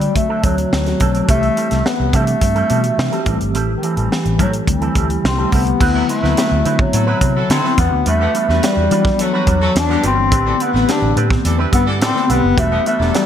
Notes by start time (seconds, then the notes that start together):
Already playing: D3 F#3 G3 A3 C4 F#4
0.01 muted clean electric guitar stroke, closed hi-hat
0.15 A3, muted clean electric guitar stroke, kick, closed hi-hat
0.29 F#3 C4 D4 A4
0.43 D2 D3 F#3 A3 C4 D4 F#4 A4, kick, closed hi-hat
0.58 muted clean electric guitar stroke, closed hi-hat
0.72 D2, muted clean electric guitar stroke, snare
0.86 D3 F#3 A3 C4 F#4, muted clean electric guitar stroke, snare, closed hi-hat
1.00 B1 F#3 C4 D4 A4, kick, closed hi-hat
1.14 F#3 C4 D4 A4, closed hi-hat
1.27 C2 E3 G3 A3 C4 E4 G4 A4, kick, closed hi-hat
1.43 closed hi-hat
1.56 G3 C4 E4 A4, closed hi-hat
1.70 C2 G3 C4 E4 A4, snare, closed hi-hat
1.85 B3, muted clean electric guitar stroke, snare
1.99 C2, muted clean electric guitar stroke
2.12 C3 E3 G3 A3 C4 D4 E4 A4, kick, closed hi-hat
2.27 muted clean electric guitar stroke, closed hi-hat
2.41 G2, muted clean electric guitar stroke, kick, closed hi-hat
2.55 G3 C4 E4 A4, closed hi-hat
2.69 B2 E3 G3 A3 C4 E4 F#4 A4, closed hi-hat
2.83 muted clean electric guitar stroke, closed hi-hat
2.98 C3, muted clean electric guitar stroke, snare
3.11 E3 G3 A3 C4 E4 G4 A4, closed hi-hat
3.26 A1 E3 G3 A3 C4 E4 G4 A4, kick, closed hi-hat
3.40 G1, muted clean electric guitar stroke, closed hi-hat
3.54 A1 G3 C4 E4 A4, closed hi-hat
3.77 D#3
3.82 E3 G3 C4 E4 A4, closed hi-hat
3.96 A1 G3 C4 E4 A4, closed hi-hat
4.11 muted clean electric guitar stroke, snare
4.25 A1, muted clean electric guitar stroke, closed hi-hat
4.38 A2 E3 F#3 G3 A3 C4 E4 A4, kick, closed hi-hat
4.53 muted clean electric guitar stroke, closed hi-hat
4.67 D2 D3 E3 G3 A3 C4 E4, muted clean electric guitar stroke, kick, closed hi-hat
4.81 G3 C4 E4 A4, closed hi-hat
4.95 D2 D3 G3 A3 C4 E4 G4 A4, kick, closed hi-hat
5.10 muted clean electric guitar stroke, closed hi-hat
5.24 C2 C4, muted clean electric guitar stroke, snare
5.38 D3 G3 A3 C4 E4 G4 A4
5.52 C2 G3 B3 C4 E4 A4, kick, open hi-hat
5.66 muted clean electric guitar stroke, closed hi-hat
5.80 D2 D3 F#3 B3 C4 E4 B4, kick, crash
5.95 F#3 E4 A4
6.08 F#3 A3 C4 E4 B4, closed hi-hat
6.22 D2 D3 F#3 B3 C4 E4 B4, snare
6.36 muted clean electric guitar stroke, snare, closed hi-hat
6.50 D2, muted clean electric guitar stroke
6.65 D3 F#3 B3 C4 E4 F#4 B4, closed hi-hat
6.79 F#3, muted clean electric guitar stroke, kick
6.93 A2 F#3 E4 A4, muted clean electric guitar stroke, closed hi-hat
7.07 F#3 C4 E4 B4
7.21 C3 F#3 C4 E4 B4, kick, closed hi-hat
7.36 F#3 E4 A4, muted clean electric guitar stroke
7.50 D3 F#3 C4 E4 A4, muted clean electric guitar stroke, snare, closed hi-hat
7.64 D3 F#3 B3 C4 E4 B4, snare
7.77 E2 E3 G3 B3 D4 F#4 B4, kick, closed hi-hat
7.92 D2, muted clean electric guitar stroke
8.06 E2 G3 A3 D4 F#4 B4, closed hi-hat
8.21 D3 B3 G4
8.34 G3 D4 F#4 B4, closed hi-hat
8.48 E2 E3 G3 B3 D4 F#4 B4, snare
8.63 G3, snare, closed hi-hat
8.77 E2, muted clean electric guitar stroke
8.90 E3 F#3 G3 B3 D4 F#4 B4, closed hi-hat
9.05 muted clean electric guitar stroke, kick, snare
9.19 F#3 A3 F#4 A4, muted clean electric guitar stroke, closed hi-hat
9.33 G3 D4 F#4 B4
9.47 E2 G3 D4 F#4 B4, kick, closed hi-hat
9.61 A3 F#4 A4, muted clean electric guitar stroke
9.75 E2 D4, muted clean electric guitar stroke, snare, closed hi-hat
9.89 D3 E3 G3 B3 D4 F#4 G4 B4, snare
10.03 G1 G3 C4 D4 F#4 B4, closed hi-hat
10.17 muted clean electric guitar stroke
10.31 A1 D3 A3 B3 C4 D4 G4 B4, kick, closed hi-hat
10.46 E3 D4 A4
10.59 B3 C4 D4 G4 B4, closed hi-hat
10.73 A1 D3 G3 A3 B3 C4 D4 E4 G4 B4, snare
10.88 D4, muted clean electric guitar stroke, snare, closed hi-hat
11.02 A1, muted clean electric guitar stroke
11.16 A2 D3 A3 B3 C4 D4 G4 B4, closed hi-hat
11.30 muted clean electric guitar stroke, kick, snare
11.44 E2 E3 D4 A4, muted clean electric guitar stroke, closed hi-hat
11.58 G3 C4 D4 E4 G4 B4
11.72 G2 B3 C4 D4 G4 B4, kick, closed hi-hat
11.86 E3 D4 A4, muted clean electric guitar stroke
12.00 A2 E3 C4 D4 A4, muted clean electric guitar stroke, snare, closed hi-hat
12.14 D3 A3 B3 C4 D4 G4 B4, snare
12.29 B1 B3 C4 D4 G4 B4, closed hi-hat
12.43 F#1, muted clean electric guitar stroke
12.56 E1 E3 G3 A3 B3 D4 F#4 B4, kick, closed hi-hat
12.72 D3 B3 G4
12.85 G3 A3 D4 F#4 B4, closed hi-hat
12.99 E1 E3 F#3 G3 B3 D4 F#4 G4 A4 B4, snare
13.14 G3, muted clean electric guitar stroke, snare, closed hi-hat